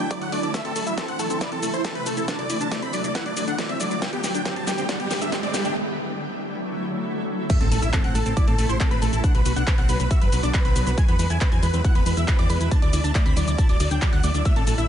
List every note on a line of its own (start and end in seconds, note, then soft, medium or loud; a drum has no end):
0.00 0.52 D3 medium
0.00 0.52 F#3 medium
0.00 0.52 A3 medium
0.00 0.10 D4 medium
0.00 3.98 E4 medium
0.10 0.21 F#3 medium
0.10 0.19 D5 medium
0.10 kick loud
0.10 closed hi-hat medium
0.21 0.29 D2 medium
0.21 0.29 F#3 medium
0.21 0.30 F#5 medium
0.21 closed hi-hat soft
0.32 0.40 D2 loud
0.32 0.40 A3 loud
0.32 0.41 D5 medium
0.32 open hi-hat medium
0.43 0.51 D2 medium
0.43 0.51 D4 medium
0.43 0.52 D5 medium
0.43 closed hi-hat soft
0.54 2.26 C3 medium
0.54 2.26 E3 medium
0.54 0.62 A3 loud
0.54 3.98 A3 medium
0.54 0.63 E5 loud
0.54 kick loud
0.54 snare soft
0.54 closed hi-hat medium
0.54 riser medium
0.54 shaker soft
0.65 0.72 A1 medium
0.65 0.73 C4 medium
0.65 0.74 A4 medium
0.65 closed hi-hat soft
0.76 0.83 A1 medium
0.76 0.83 A3 medium
0.76 0.84 A4 medium
0.76 open hi-hat loud
0.76 shaker medium
0.86 0.94 A1 medium
0.86 0.94 E4 loud
0.86 0.95 E5 medium
0.86 closed hi-hat soft
0.86 shaker soft
0.97 1.08 C4 loud
0.97 1.06 A4 medium
0.97 kick loud
0.97 snare soft
0.97 closed hi-hat medium
0.97 shaker soft
1.08 1.16 A1 medium
1.08 1.19 C4 loud
1.08 1.17 F#5 medium
1.08 closed hi-hat soft
1.19 1.27 A1 loud
1.19 1.24 A3 loud
1.19 1.28 A4 medium
1.19 open hi-hat medium
1.19 shaker medium
1.30 1.38 A1 medium
1.30 1.38 C4 medium
1.30 1.39 A4 medium
1.30 closed hi-hat soft
1.30 shaker soft
1.41 1.51 E4 medium
1.41 1.50 D5 medium
1.41 kick loud
1.41 snare medium
1.41 closed hi-hat medium
1.41 shaker soft
1.52 1.59 A1 medium
1.52 1.60 C4 medium
1.52 1.61 A4 medium
1.52 closed hi-hat soft
1.63 1.70 A1 loud
1.63 1.70 A3 medium
1.63 1.71 A4 medium
1.63 open hi-hat loud
1.63 shaker medium
1.74 1.81 A1 medium
1.74 1.81 E4 loud
1.74 1.82 C5 medium
1.74 closed hi-hat soft
1.74 shaker soft
1.84 1.95 C4 loud
1.84 1.93 A4 medium
1.84 kick loud
1.84 snare medium
1.84 closed hi-hat medium
1.84 shaker soft
1.95 2.03 A1 medium
1.95 2.06 C4 loud
1.95 2.04 B4 medium
1.95 closed hi-hat soft
2.06 2.14 A1 loud
2.06 2.17 A3 loud
2.06 2.15 A4 medium
2.06 open hi-hat medium
2.06 shaker medium
2.17 2.25 A1 medium
2.17 2.28 E4 medium
2.17 2.26 A4 medium
2.17 closed hi-hat soft
2.17 shaker soft
2.28 5.72 D3 medium
2.28 4.00 F#3 medium
2.28 2.38 D4 medium
2.28 2.37 A5 loud
2.28 kick loud
2.28 snare medium
2.28 closed hi-hat medium
2.28 shaker soft
2.39 2.46 D2 medium
2.39 2.47 F#3 medium
2.39 2.48 D5 medium
2.39 closed hi-hat medium
2.50 2.57 D2 loud
2.50 2.57 E4 medium
2.50 2.58 D5 medium
2.50 open hi-hat loud
2.50 shaker medium
2.61 2.68 D2 medium
2.61 2.68 D4 loud
2.61 2.69 A5 medium
2.61 closed hi-hat soft
2.61 shaker soft
2.71 2.82 A3 loud
2.71 2.80 D5 medium
2.71 kick loud
2.71 snare medium
2.71 closed hi-hat medium
2.71 shaker soft
2.82 2.90 D2 medium
2.82 2.93 C4 loud
2.82 2.91 B5 medium
2.82 closed hi-hat medium
2.93 3.01 D2 loud
2.93 3.04 F#3 loud
2.93 3.02 D5 medium
2.93 open hi-hat medium
2.93 shaker medium
3.04 3.12 D2 medium
3.04 3.09 F#3 medium
3.04 3.13 D5 medium
3.04 closed hi-hat medium
3.04 shaker soft
3.15 3.25 E4 medium
3.15 3.24 F#5 medium
3.15 kick loud
3.15 snare medium
3.15 closed hi-hat medium
3.15 shaker soft
3.26 3.33 D2 medium
3.26 3.33 F#3 medium
3.26 3.35 D5 medium
3.26 closed hi-hat medium
3.37 3.44 D2 loud
3.37 3.44 F#3 medium
3.37 3.45 D5 medium
3.37 open hi-hat loud
3.37 shaker medium
3.47 3.55 D2 medium
3.47 3.58 D4 loud
3.47 3.56 F#5 medium
3.47 closed hi-hat soft
3.47 shaker soft
3.58 3.69 A3 loud
3.58 3.67 D5 medium
3.58 kick loud
3.58 snare medium
3.58 closed hi-hat medium
3.58 shaker soft
3.69 3.77 D2 medium
3.69 3.80 C4 loud
3.69 3.78 E5 medium
3.69 closed hi-hat medium
3.80 3.88 D2 loud
3.80 3.91 F#3 loud
3.80 3.89 D5 medium
3.80 open hi-hat medium
3.80 shaker medium
3.91 3.99 D2 medium
3.91 3.96 F#3 medium
3.91 4.00 D5 medium
3.91 closed hi-hat medium
3.91 shaker soft
4.02 5.74 G3 medium
4.02 4.10 G3 loud
4.02 5.74 B3 medium
4.02 5.74 G4 medium
4.02 4.11 G5 loud
4.02 kick loud
4.02 snare medium
4.02 closed hi-hat medium
4.02 shaker soft
4.13 4.20 G1 medium
4.13 4.20 B3 medium
4.13 4.22 G4 medium
4.13 closed hi-hat medium
4.24 4.31 G1 loud
4.24 4.31 G4 medium
4.24 4.32 G4 medium
4.24 snare medium
4.24 open hi-hat loud
4.24 shaker medium
4.35 4.42 G1 medium
4.35 4.42 D4 loud
4.35 4.43 G5 medium
4.35 closed hi-hat medium
4.35 shaker soft
4.45 4.56 C4 loud
4.45 4.54 G4 medium
4.45 kick loud
4.45 snare medium
4.45 closed hi-hat medium
4.45 shaker soft
4.56 4.64 G1 medium
4.56 4.67 C4 loud
4.56 4.65 A5 medium
4.56 closed hi-hat soft
4.67 4.75 G1 loud
4.67 4.72 G3 loud
4.67 4.76 G4 medium
4.67 snare medium
4.67 open hi-hat medium
4.67 shaker medium
4.78 4.86 G1 medium
4.78 4.86 C4 medium
4.78 4.87 G4 medium
4.78 closed hi-hat medium
4.78 shaker soft
4.89 4.99 D4 medium
4.89 4.98 F#5 medium
4.89 kick loud
4.89 snare medium
4.89 closed hi-hat loud
4.89 shaker soft
5.00 5.07 G1 medium
5.00 5.07 B3 medium
5.00 5.08 G4 medium
5.00 closed hi-hat medium
5.11 5.18 G1 loud
5.11 5.18 G4 medium
5.11 5.19 G4 medium
5.11 snare medium
5.11 open hi-hat loud
5.11 shaker medium
5.21 5.29 G1 medium
5.21 5.29 D4 loud
5.21 5.30 E5 medium
5.21 closed hi-hat medium
5.21 shaker soft
5.32 5.43 C4 loud
5.32 5.41 G4 medium
5.32 kick loud
5.32 snare medium
5.32 closed hi-hat medium
5.32 shaker soft
5.43 5.51 G1 medium
5.43 5.54 C4 loud
5.43 5.52 D5 medium
5.43 closed hi-hat medium
5.54 5.62 G1 loud
5.54 5.64 G3 loud
5.54 5.63 G4 medium
5.54 snare medium
5.54 open hi-hat medium
5.54 shaker medium
5.65 5.73 G1 medium
5.65 5.75 D4 medium
5.65 5.74 G4 medium
5.65 closed hi-hat medium
5.65 shaker soft
5.76 7.48 D3 medium
5.76 7.48 F#3 medium
5.76 7.48 A3 medium
5.76 7.48 E4 medium
7.50 9.22 C3 medium
7.50 9.22 E3 medium
7.50 7.57 A3 loud
7.50 9.22 A3 medium
7.50 9.22 E4 medium
7.50 7.58 E5 loud
7.50 7.59 E6 loud
7.50 kick loud
7.50 closed hi-hat medium
7.50 crash loud
7.50 impact medium
7.50 shaker soft
7.61 7.68 A1 medium
7.61 7.68 C4 medium
7.61 7.69 A4 medium
7.61 7.69 A5 medium
7.61 closed hi-hat medium
7.71 7.79 A1 loud
7.71 7.79 A3 medium
7.71 7.80 A4 medium
7.71 7.80 A5 medium
7.71 open hi-hat loud
7.71 shaker medium
7.82 7.90 A1 medium
7.82 7.90 E4 loud
7.82 7.91 E5 medium
7.82 7.91 E6 medium
7.82 closed hi-hat medium
7.82 shaker soft
7.93 8.04 C4 loud
7.93 8.02 A4 medium
7.93 8.02 A5 medium
7.93 kick loud
7.93 clap loud
7.93 closed hi-hat loud
7.93 shaker soft
8.04 8.12 A1 medium
8.04 8.14 C4 loud
8.04 8.13 F#5 medium
8.04 8.13 F#6 medium
8.04 closed hi-hat medium
8.15 8.23 A1 loud
8.15 8.20 A3 loud
8.15 8.24 A4 medium
8.15 8.24 A5 medium
8.15 open hi-hat medium
8.15 shaker medium
8.26 8.33 A1 medium
8.26 8.33 C4 medium
8.26 8.35 A4 medium
8.26 8.34 A5 medium
8.26 closed hi-hat medium
8.26 shaker soft
8.37 8.47 E4 medium
8.37 8.45 D5 medium
8.37 8.45 D6 medium
8.37 kick loud
8.37 closed hi-hat loud
8.37 shaker soft
8.47 8.55 A2 medium
8.47 8.55 C4 medium
8.47 8.56 A4 medium
8.47 8.56 A5 medium
8.47 closed hi-hat medium
8.58 8.66 A1 loud
8.58 8.66 A3 medium
8.58 8.67 A4 medium
8.58 8.67 A5 medium
8.58 open hi-hat loud
8.58 shaker medium
8.69 8.77 A1 medium
8.69 8.77 E4 loud
8.69 8.78 C5 medium
8.69 8.78 C6 medium
8.69 closed hi-hat medium
8.69 shaker soft
8.80 8.91 C4 loud
8.80 8.89 A4 medium
8.80 8.89 A5 medium
8.80 kick loud
8.80 clap loud
8.80 closed hi-hat medium
8.80 shaker soft
8.91 8.99 A1 medium
8.91 9.01 C4 loud
8.91 9.00 B4 medium
8.91 9.00 B5 loud
8.91 closed hi-hat medium
9.02 9.10 A1 loud
9.02 9.12 A3 loud
9.02 9.11 A4 medium
9.02 9.11 A5 medium
9.02 open hi-hat medium
9.02 shaker medium
9.13 9.20 A1 medium
9.13 9.23 E4 medium
9.13 9.22 A4 medium
9.13 9.21 A5 medium
9.13 closed hi-hat medium
9.13 shaker soft
9.24 10.96 D3 medium
9.24 10.96 F#3 medium
9.24 10.96 B3 medium
9.24 9.34 D4 medium
9.24 10.96 F#4 medium
9.24 9.32 F#5 loud
9.24 9.32 F#6 loud
9.24 kick loud
9.24 closed hi-hat medium
9.24 shaker soft
9.34 9.42 B1 medium
9.34 9.42 F#3 medium
9.34 9.43 B4 medium
9.34 9.43 B5 medium
9.34 closed hi-hat medium
9.46 9.53 B1 loud
9.46 9.53 F#4 medium
9.46 9.54 B4 medium
9.46 9.54 B5 medium
9.46 open hi-hat loud
9.46 shaker medium
9.56 9.64 B1 medium
9.56 9.64 D4 loud
9.56 9.65 F#5 medium
9.56 9.65 F#6 medium
9.56 closed hi-hat medium
9.56 shaker soft
9.67 9.78 C4 loud
9.67 9.76 B4 medium
9.67 9.76 B5 medium
9.67 kick loud
9.67 clap loud
9.67 closed hi-hat medium
9.67 shaker soft
9.78 9.86 B1 medium
9.78 9.88 C4 loud
9.78 9.87 F#5 loud
9.78 9.87 F#6 medium
9.78 closed hi-hat medium
9.89 9.97 B1 loud
9.89 9.99 F#3 loud
9.89 9.98 B4 medium
9.89 9.98 B5 medium
9.89 open hi-hat loud
9.89 shaker medium
10.00 10.07 B1 medium
10.00 10.04 F#3 medium
10.00 10.09 B4 medium
10.00 10.08 B5 medium
10.00 closed hi-hat medium
10.00 shaker soft
10.11 10.21 F#4 medium
10.11 10.19 E5 medium
10.11 10.19 E6 medium
10.11 kick loud
10.11 closed hi-hat medium
10.11 shaker soft
10.22 10.29 F#1 medium
10.22 10.29 F#3 medium
10.22 10.30 B4 medium
10.22 10.30 B5 medium
10.22 closed hi-hat medium
10.32 10.40 B1 loud
10.32 10.40 F#3 medium
10.32 10.41 B4 medium
10.32 10.41 B5 medium
10.32 open hi-hat loud
10.32 shaker medium
10.43 10.51 B1 medium
10.43 10.54 D4 loud
10.43 10.52 D5 medium
10.43 10.52 D6 medium
10.43 closed hi-hat medium
10.43 shaker soft
10.54 10.65 C4 loud
10.54 10.63 B4 medium
10.54 10.63 B5 medium
10.54 kick loud
10.54 clap loud
10.54 closed hi-hat medium
10.54 shaker soft
10.65 10.73 B1 medium
10.65 10.75 C4 loud
10.65 10.74 B4 medium
10.65 10.74 B5 loud
10.65 closed hi-hat medium
10.76 10.83 B1 loud
10.76 10.86 F#3 loud
10.76 10.85 B4 medium
10.76 10.85 B5 medium
10.76 open hi-hat loud
10.76 shaker medium
10.87 10.94 B1 medium
10.87 10.91 F#3 medium
10.87 10.95 B4 medium
10.87 10.95 B5 medium
10.87 closed hi-hat medium
10.87 shaker soft
10.97 12.70 B2 medium
10.97 12.70 E3 medium
10.97 12.70 G#3 medium
10.97 11.05 G#3 loud
10.97 14.88 E4 medium
10.97 11.06 G#5 loud
10.97 11.06 G#6 loud
10.97 kick loud
10.97 closed hi-hat medium
10.97 shaker soft
11.08 11.16 E2 medium
11.08 11.16 B3 medium
11.08 11.17 B4 medium
11.08 11.17 B5 medium
11.08 closed hi-hat soft
11.19 11.27 E2 loud
11.19 11.27 G#3 medium
11.19 11.28 B4 medium
11.19 11.28 B5 medium
11.19 open hi-hat loud
11.19 shaker medium
11.30 11.38 E2 medium
11.30 11.38 E4 loud
11.30 11.39 G#5 medium
11.30 11.39 G#6 medium
11.30 closed hi-hat medium
11.30 shaker soft
11.41 11.51 C4 loud
11.41 11.50 B4 medium
11.41 11.50 B5 medium
11.41 kick loud
11.41 clap loud
11.41 closed hi-hat medium
11.41 shaker soft
11.52 11.59 E2 medium
11.52 11.62 C4 loud
11.52 11.61 G#5 loud
11.52 11.61 G#6 medium
11.52 closed hi-hat soft
11.63 11.70 E2 loud
11.63 11.67 G#3 loud
11.63 11.71 B4 medium
11.63 11.72 B5 medium
11.63 open hi-hat medium
11.63 shaker medium
11.73 11.81 E2 loud
11.73 11.81 C4 medium
11.73 11.82 B4 medium
11.73 11.83 B5 medium
11.73 closed hi-hat medium
11.73 shaker soft
11.84 11.95 E4 medium
11.84 11.93 F#5 loud
11.84 11.93 F#6 medium
11.84 kick loud
11.84 closed hi-hat medium
11.84 shaker soft
11.95 12.03 E1 medium
11.95 12.03 B3 medium
11.95 12.04 B4 medium
11.95 12.04 B5 medium
11.95 closed hi-hat medium
12.06 12.14 E2 loud
12.06 12.14 G#3 medium
12.06 12.15 B4 medium
12.06 12.15 B5 medium
12.06 open hi-hat loud
12.06 shaker medium
12.17 12.25 E2 medium
12.17 12.25 E4 loud
12.17 12.26 E5 medium
12.17 12.26 E6 medium
12.17 closed hi-hat soft
12.17 shaker soft
12.28 12.38 C4 loud
12.28 12.37 B4 medium
12.28 12.37 B5 medium
12.28 kick loud
12.28 clap loud
12.28 closed hi-hat medium
12.28 shaker soft
12.39 12.46 E2 medium
12.39 12.49 C4 loud
12.39 12.48 D5 medium
12.39 12.48 D6 loud
12.39 closed hi-hat medium
12.50 12.57 E2 loud
12.50 12.60 G#3 loud
12.50 12.58 B4 medium
12.50 12.58 B5 medium
12.50 open hi-hat loud
12.50 shaker medium
12.61 12.68 E2 medium
12.61 12.71 E4 medium
12.61 12.69 B4 medium
12.61 12.69 B5 medium
12.61 closed hi-hat medium
12.61 shaker soft
12.71 14.44 D3 medium
12.71 14.44 F#3 medium
12.71 14.88 A3 medium
12.71 12.82 D4 medium
12.71 12.80 A5 loud
12.71 12.80 A6 loud
12.71 kick loud
12.71 closed hi-hat medium
12.71 shaker soft
12.82 12.90 D2 medium
12.82 12.90 F#3 medium
12.82 12.91 D5 medium
12.82 12.91 D6 medium
12.82 closed hi-hat medium
12.93 13.01 D2 loud
12.93 13.01 E4 medium
12.93 13.02 D5 medium
12.93 13.02 D6 medium
12.93 open hi-hat loud
12.93 shaker medium
13.04 13.12 D2 medium
13.04 13.12 D4 loud
13.04 13.13 A5 medium
13.04 13.13 A6 medium
13.04 closed hi-hat soft
13.04 shaker soft
13.15 13.25 A3 loud
13.15 13.24 D5 medium
13.15 13.24 D6 medium
13.15 kick loud
13.15 clap loud
13.15 closed hi-hat medium
13.15 shaker soft
13.26 13.33 D2 medium
13.26 13.36 C4 loud
13.26 13.34 B5 loud
13.26 13.34 B6 medium
13.26 closed hi-hat soft
13.37 13.44 D2 loud
13.37 13.47 F#3 loud
13.37 13.45 D5 medium
13.37 13.45 D6 medium
13.37 open hi-hat medium
13.37 shaker medium
13.47 13.55 D2 medium
13.47 13.52 F#3 medium
13.47 13.56 D5 medium
13.47 13.56 D6 medium
13.47 closed hi-hat soft
13.47 shaker soft
13.58 13.69 E4 medium
13.58 13.67 A5 medium
13.58 13.67 A6 loud
13.58 kick loud
13.58 closed hi-hat medium
13.58 shaker soft
13.69 13.77 D1 medium
13.69 13.77 F#3 medium
13.69 13.78 D5 medium
13.69 13.78 D6 medium
13.69 closed hi-hat medium
13.80 13.88 D2 loud
13.80 13.90 F#3 loud
13.80 13.89 D5 medium
13.80 13.89 D6 medium
13.80 open hi-hat loud
13.80 shaker medium
13.91 13.99 D2 medium
13.91 14.01 D4 medium
13.91 14.00 G5 medium
13.91 14.00 G6 medium
13.91 closed hi-hat soft
13.91 shaker soft
14.02 14.12 F#3 medium
14.02 14.11 D5 medium
14.02 14.11 D6 medium
14.02 kick loud
14.02 clap loud
14.02 closed hi-hat medium
14.02 shaker soft
14.13 14.20 D2 medium
14.13 14.20 F#3 medium
14.13 14.21 F#5 medium
14.13 14.21 F#6 medium
14.13 closed hi-hat soft
14.23 14.31 D2 loud
14.23 14.31 A3 loud
14.23 14.32 D5 medium
14.23 14.32 D6 medium
14.23 open hi-hat loud
14.23 shaker medium
14.34 14.42 D2 medium
14.34 14.42 D4 medium
14.34 14.43 D5 medium
14.34 14.43 D6 medium
14.34 closed hi-hat soft
14.34 shaker soft
14.45 14.88 C3 medium
14.45 14.88 E3 medium
14.45 14.53 A3 loud
14.45 14.54 E5 loud
14.45 14.54 E6 loud
14.45 kick loud
14.45 closed hi-hat medium
14.45 shaker soft
14.56 14.64 A1 medium
14.56 14.64 C4 medium
14.56 14.65 A4 medium
14.56 14.65 A5 medium
14.56 closed hi-hat medium
14.67 14.75 A1 loud
14.67 14.75 A3 medium
14.67 14.76 A4 medium
14.67 14.76 A5 medium
14.67 open hi-hat loud
14.67 shaker medium
14.78 14.86 A1 medium
14.78 14.86 E4 loud
14.78 14.87 E5 medium
14.78 14.87 E6 medium
14.78 closed hi-hat soft
14.78 shaker soft